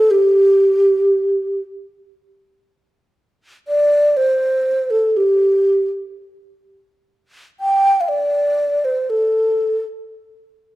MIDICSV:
0, 0, Header, 1, 2, 480
1, 0, Start_track
1, 0, Tempo, 500000
1, 10324, End_track
2, 0, Start_track
2, 0, Title_t, "Xiao"
2, 0, Program_c, 0, 77
2, 0, Note_on_c, 0, 69, 88
2, 104, Note_on_c, 0, 67, 82
2, 118, Note_off_c, 0, 69, 0
2, 1555, Note_off_c, 0, 67, 0
2, 3532, Note_on_c, 0, 74, 88
2, 4002, Note_on_c, 0, 72, 81
2, 4016, Note_off_c, 0, 74, 0
2, 4708, Note_on_c, 0, 69, 76
2, 4722, Note_off_c, 0, 72, 0
2, 4960, Note_on_c, 0, 67, 66
2, 4975, Note_off_c, 0, 69, 0
2, 5651, Note_off_c, 0, 67, 0
2, 7298, Note_on_c, 0, 79, 88
2, 7687, Note_on_c, 0, 77, 65
2, 7701, Note_off_c, 0, 79, 0
2, 7763, Note_on_c, 0, 74, 85
2, 7777, Note_off_c, 0, 77, 0
2, 8493, Note_on_c, 0, 72, 75
2, 8508, Note_off_c, 0, 74, 0
2, 8734, Note_on_c, 0, 69, 66
2, 8748, Note_off_c, 0, 72, 0
2, 9458, Note_off_c, 0, 69, 0
2, 10324, End_track
0, 0, End_of_file